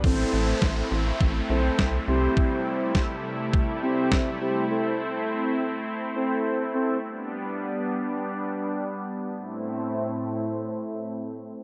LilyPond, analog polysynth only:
\new Staff \with { instrumentName = "Analog polysynth" } { \time 4/4 \key a \minor \tempo 4 = 103 <c' e' a' c''>4. r4 <c' e' a' c''>4 <c' e' g' c''>8~ | <c' e' g' c''>4 r4. <c' e' g' c''>4 <c' e' g' c''>8 | <c' e' a' c''>4. r4 <c' e' a' c''>4 <c' e' a' c''>8 | r1 |
r1 | }